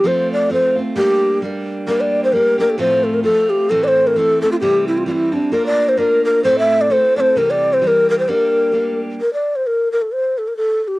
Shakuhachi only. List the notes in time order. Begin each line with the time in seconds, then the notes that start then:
0.07 C5
0.33 D5
0.53 C5
0.97 G4
1.88 A#4
2.01 D5
2.24 C5
2.33 A#4
2.60 A#4
2.70 A4
2.79 C5
3.04 A4
3.14 A#4
3.23 A4
3.50 G4
3.70 A4
3.84 D5
3.88 C5
4.07 A#4
4.17 A4
4.42 A4
4.52 F4
4.61 G4
4.88 E4
4.98 F4
5.07 F4
5.12 E4
5.33 D4
5.53 A#4
5.66 D5
5.89 C5
5.98 A#4
6.25 A#4
6.44 C5
6.59 E5
6.81 D5
6.92 C5
7.17 C5 D5
7.37 A#4
7.50 D5
7.73 C5
7.84 A#4 C5
8.10 A#4
8.19 C5
8.29 A#4
9.21 A#4
9.33 D5
9.56 C5
9.67 A#4
9.92 A#4
10.02 A4
10.12 C5
10.38 A4
10.48 A#4
10.57 A4
10.84 G4 A4